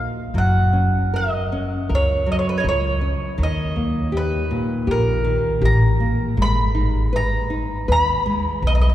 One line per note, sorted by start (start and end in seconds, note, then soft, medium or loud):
0.00 0.19 D#4 soft
0.00 0.19 F#4 soft
0.00 0.19 A#4 soft
0.00 0.33 F5 medium
0.34 1.35 F#1 medium
0.34 2.25 F#3 medium
0.34 1.16 F#5 medium
0.73 1.11 C#4 soft
1.14 1.51 A#4 medium
1.14 1.93 D#5 medium
1.52 1.89 C#4 soft
1.89 2.39 C#2 medium
1.89 2.26 A#4 medium
1.95 2.31 C#5 medium
2.26 2.63 F#3 medium
2.32 2.38 D#5 medium
2.39 2.47 C#5 medium
2.49 2.57 B4 medium
2.58 2.65 C#5 medium
2.58 2.66 D#5 medium
2.64 3.13 C#2 medium
2.64 3.00 A#4 soft
2.69 3.43 C#5 medium
3.01 3.37 C#4 soft
3.38 4.36 D#2 medium
3.38 5.23 D#3 medium
3.43 4.16 D#5 medium
3.76 4.12 A#3 soft
4.12 4.49 G4 medium
4.17 4.91 B4 medium
4.51 4.87 A#2 soft
4.87 5.36 A#1 medium
4.87 5.23 G4 medium
4.87 5.66 A#4 medium
5.24 5.61 D#3 medium
5.61 6.11 A1 loud
5.61 5.99 G4 soft
5.61 6.41 A#5 medium
6.00 6.37 A#3 medium
6.37 7.36 G#1 medium
6.37 8.25 G#3 medium
6.42 7.16 B5 loud
6.75 7.12 D#4 medium
7.13 7.50 B4 medium
7.13 7.86 A#5 medium
7.50 7.87 D#4 soft
7.88 8.37 D#2 medium
7.88 8.25 B4 medium
7.88 8.61 B5 loud
8.26 8.62 G#3 medium
8.62 8.95 B1 medium
8.62 8.95 B4 soft
8.67 8.72 D#5 medium
8.75 8.80 D#5 medium
8.81 8.87 D#5 medium
8.89 8.94 D#5 soft